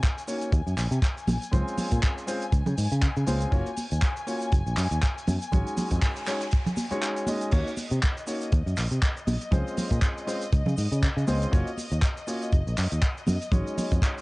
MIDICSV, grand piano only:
0, 0, Header, 1, 2, 480
1, 0, Start_track
1, 0, Tempo, 500000
1, 1463, Time_signature, 4, 2, 24, 8
1, 13647, End_track
2, 0, Start_track
2, 0, Title_t, "Grand piano"
2, 0, Program_c, 0, 0
2, 261, Note_on_c, 0, 58, 72
2, 265, Note_on_c, 0, 61, 68
2, 267, Note_on_c, 0, 63, 68
2, 269, Note_on_c, 0, 66, 68
2, 271, Note_on_c, 0, 73, 81
2, 472, Note_off_c, 0, 58, 0
2, 474, Note_off_c, 0, 61, 0
2, 475, Note_off_c, 0, 63, 0
2, 476, Note_off_c, 0, 66, 0
2, 477, Note_off_c, 0, 73, 0
2, 1452, Note_on_c, 0, 56, 82
2, 1457, Note_on_c, 0, 60, 76
2, 1461, Note_on_c, 0, 61, 76
2, 1466, Note_on_c, 0, 65, 75
2, 1471, Note_on_c, 0, 72, 90
2, 2152, Note_off_c, 0, 56, 0
2, 2155, Note_off_c, 0, 60, 0
2, 2157, Note_off_c, 0, 61, 0
2, 2159, Note_off_c, 0, 65, 0
2, 2162, Note_off_c, 0, 72, 0
2, 2176, Note_on_c, 0, 56, 83
2, 2179, Note_on_c, 0, 60, 72
2, 2180, Note_on_c, 0, 61, 73
2, 2184, Note_on_c, 0, 65, 75
2, 2186, Note_on_c, 0, 72, 91
2, 2322, Note_off_c, 0, 56, 0
2, 2323, Note_off_c, 0, 60, 0
2, 2324, Note_off_c, 0, 61, 0
2, 2326, Note_off_c, 0, 65, 0
2, 2326, Note_off_c, 0, 72, 0
2, 3134, Note_on_c, 0, 56, 80
2, 3137, Note_on_c, 0, 60, 75
2, 3139, Note_on_c, 0, 61, 75
2, 3141, Note_on_c, 0, 65, 74
2, 3144, Note_on_c, 0, 72, 90
2, 3353, Note_off_c, 0, 56, 0
2, 3355, Note_off_c, 0, 60, 0
2, 3356, Note_off_c, 0, 61, 0
2, 3357, Note_off_c, 0, 65, 0
2, 3358, Note_off_c, 0, 72, 0
2, 3373, Note_on_c, 0, 58, 103
2, 3376, Note_on_c, 0, 61, 90
2, 3378, Note_on_c, 0, 65, 92
2, 3381, Note_on_c, 0, 66, 95
2, 3382, Note_on_c, 0, 73, 113
2, 3520, Note_off_c, 0, 58, 0
2, 3522, Note_off_c, 0, 61, 0
2, 3523, Note_off_c, 0, 65, 0
2, 3524, Note_off_c, 0, 66, 0
2, 3525, Note_off_c, 0, 73, 0
2, 4095, Note_on_c, 0, 58, 75
2, 4097, Note_on_c, 0, 61, 67
2, 4100, Note_on_c, 0, 65, 68
2, 4102, Note_on_c, 0, 66, 66
2, 4103, Note_on_c, 0, 73, 81
2, 4309, Note_off_c, 0, 58, 0
2, 4310, Note_off_c, 0, 61, 0
2, 4312, Note_off_c, 0, 65, 0
2, 4313, Note_off_c, 0, 66, 0
2, 4313, Note_off_c, 0, 73, 0
2, 5294, Note_on_c, 0, 56, 81
2, 5300, Note_on_c, 0, 61, 75
2, 5303, Note_on_c, 0, 63, 76
2, 5309, Note_on_c, 0, 66, 75
2, 5314, Note_on_c, 0, 73, 89
2, 5993, Note_off_c, 0, 56, 0
2, 5996, Note_off_c, 0, 61, 0
2, 5998, Note_off_c, 0, 63, 0
2, 6001, Note_off_c, 0, 66, 0
2, 6003, Note_off_c, 0, 73, 0
2, 6018, Note_on_c, 0, 56, 79
2, 6020, Note_on_c, 0, 61, 74
2, 6023, Note_on_c, 0, 63, 74
2, 6024, Note_on_c, 0, 66, 75
2, 6027, Note_on_c, 0, 73, 91
2, 6163, Note_off_c, 0, 56, 0
2, 6164, Note_off_c, 0, 61, 0
2, 6165, Note_off_c, 0, 63, 0
2, 6166, Note_off_c, 0, 66, 0
2, 6167, Note_off_c, 0, 73, 0
2, 6631, Note_on_c, 0, 56, 95
2, 6632, Note_on_c, 0, 61, 87
2, 6635, Note_on_c, 0, 63, 88
2, 6638, Note_on_c, 0, 66, 87
2, 6639, Note_on_c, 0, 73, 106
2, 6954, Note_off_c, 0, 56, 0
2, 6955, Note_off_c, 0, 61, 0
2, 6957, Note_off_c, 0, 63, 0
2, 6958, Note_off_c, 0, 66, 0
2, 6959, Note_off_c, 0, 73, 0
2, 6977, Note_on_c, 0, 56, 87
2, 6979, Note_on_c, 0, 61, 81
2, 6981, Note_on_c, 0, 63, 80
2, 6984, Note_on_c, 0, 66, 81
2, 6987, Note_on_c, 0, 75, 98
2, 7195, Note_off_c, 0, 56, 0
2, 7196, Note_off_c, 0, 61, 0
2, 7197, Note_off_c, 0, 63, 0
2, 7198, Note_off_c, 0, 66, 0
2, 7200, Note_off_c, 0, 75, 0
2, 7217, Note_on_c, 0, 58, 103
2, 7219, Note_on_c, 0, 61, 89
2, 7222, Note_on_c, 0, 63, 90
2, 7224, Note_on_c, 0, 66, 92
2, 7226, Note_on_c, 0, 73, 108
2, 7363, Note_off_c, 0, 58, 0
2, 7363, Note_off_c, 0, 61, 0
2, 7365, Note_off_c, 0, 63, 0
2, 7366, Note_off_c, 0, 66, 0
2, 7367, Note_off_c, 0, 73, 0
2, 7935, Note_on_c, 0, 58, 77
2, 7937, Note_on_c, 0, 61, 66
2, 7938, Note_on_c, 0, 63, 68
2, 7942, Note_on_c, 0, 66, 67
2, 7944, Note_on_c, 0, 73, 85
2, 8149, Note_off_c, 0, 58, 0
2, 8150, Note_off_c, 0, 61, 0
2, 8151, Note_off_c, 0, 63, 0
2, 8153, Note_off_c, 0, 66, 0
2, 8154, Note_off_c, 0, 73, 0
2, 9133, Note_on_c, 0, 56, 82
2, 9137, Note_on_c, 0, 60, 74
2, 9142, Note_on_c, 0, 61, 77
2, 9147, Note_on_c, 0, 65, 78
2, 9151, Note_on_c, 0, 72, 91
2, 9833, Note_off_c, 0, 56, 0
2, 9835, Note_off_c, 0, 60, 0
2, 9837, Note_off_c, 0, 61, 0
2, 9840, Note_off_c, 0, 65, 0
2, 9842, Note_off_c, 0, 72, 0
2, 9858, Note_on_c, 0, 56, 83
2, 9859, Note_on_c, 0, 60, 75
2, 9861, Note_on_c, 0, 61, 75
2, 9864, Note_on_c, 0, 65, 75
2, 9868, Note_on_c, 0, 72, 90
2, 10003, Note_off_c, 0, 56, 0
2, 10003, Note_off_c, 0, 60, 0
2, 10004, Note_off_c, 0, 61, 0
2, 10006, Note_off_c, 0, 65, 0
2, 10008, Note_off_c, 0, 72, 0
2, 10817, Note_on_c, 0, 56, 81
2, 10820, Note_on_c, 0, 60, 76
2, 10822, Note_on_c, 0, 61, 75
2, 10825, Note_on_c, 0, 65, 73
2, 10827, Note_on_c, 0, 72, 92
2, 11035, Note_off_c, 0, 56, 0
2, 11036, Note_off_c, 0, 60, 0
2, 11037, Note_off_c, 0, 61, 0
2, 11039, Note_off_c, 0, 65, 0
2, 11040, Note_off_c, 0, 72, 0
2, 11054, Note_on_c, 0, 58, 99
2, 11058, Note_on_c, 0, 61, 92
2, 11060, Note_on_c, 0, 65, 91
2, 11063, Note_on_c, 0, 66, 91
2, 11065, Note_on_c, 0, 73, 111
2, 11201, Note_off_c, 0, 58, 0
2, 11203, Note_off_c, 0, 61, 0
2, 11204, Note_off_c, 0, 65, 0
2, 11205, Note_off_c, 0, 66, 0
2, 11206, Note_off_c, 0, 73, 0
2, 11777, Note_on_c, 0, 58, 73
2, 11778, Note_on_c, 0, 61, 66
2, 11780, Note_on_c, 0, 65, 68
2, 11784, Note_on_c, 0, 66, 69
2, 11785, Note_on_c, 0, 73, 84
2, 11990, Note_off_c, 0, 58, 0
2, 11991, Note_off_c, 0, 61, 0
2, 11992, Note_off_c, 0, 65, 0
2, 11993, Note_off_c, 0, 66, 0
2, 11994, Note_off_c, 0, 73, 0
2, 12973, Note_on_c, 0, 56, 80
2, 12978, Note_on_c, 0, 61, 78
2, 12983, Note_on_c, 0, 63, 75
2, 12987, Note_on_c, 0, 66, 75
2, 12992, Note_on_c, 0, 73, 88
2, 13647, Note_off_c, 0, 56, 0
2, 13647, Note_off_c, 0, 61, 0
2, 13647, Note_off_c, 0, 63, 0
2, 13647, Note_off_c, 0, 66, 0
2, 13647, Note_off_c, 0, 73, 0
2, 13647, End_track
0, 0, End_of_file